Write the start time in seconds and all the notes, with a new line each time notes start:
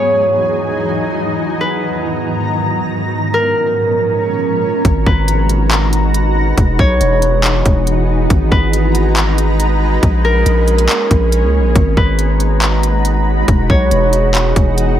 Already playing: E2 E3 F#3 D#4 G#4 B4 C#5
1.40 G#2 D#3 B3 A#5
1.61 B4
3.12 A#2 F3 G#3 C#4 A#4
3.34 A#4
4.85 G#1 G#3 D#4 F#4 B4 A#5, kick, closed hi-hat
5.06 G#1 B4, kick
5.28 closed hi-hat
5.49 closed hi-hat
5.71 clap, closed hi-hat
5.93 closed hi-hat
6.14 closed hi-hat
6.58 E1 E3 B3 F#4 G#4, kick, closed hi-hat
6.79 B1 C#5, kick
7.01 E1, closed hi-hat
7.22 closed hi-hat
7.44 clap, closed hi-hat
7.66 E1, kick, closed hi-hat
7.87 closed hi-hat
8.30 G#1 G#3 B4 A#5, kick, closed hi-hat
8.51 G#1 B4, kick
8.73 closed hi-hat
8.95 closed hi-hat
9.17 clap, closed hi-hat
9.38 closed hi-hat
9.60 closed hi-hat
10.03 A#1 A#3 C#4, kick, closed hi-hat
10.25 A#4
10.46 A#1, closed hi-hat
10.67 closed hi-hat, open hi-hat
10.78 closed hi-hat
10.89 clap, closed hi-hat
11.11 A#1, kick, closed hi-hat
11.32 closed hi-hat
11.43 C#2
11.59 A#1
11.75 G#1 G#3 D#4 F#4 B4 A#5, kick, closed hi-hat
11.97 G#1 B4, kick
12.19 closed hi-hat
12.40 closed hi-hat
12.62 clap, closed hi-hat
12.83 closed hi-hat
13.05 closed hi-hat
13.48 E1 E3 B3 D#4 G#4, kick, closed hi-hat
13.70 B1 C#5, kick
13.91 E1, closed hi-hat
14.13 closed hi-hat
14.35 clap, closed hi-hat
14.56 E1, kick, closed hi-hat
14.78 closed hi-hat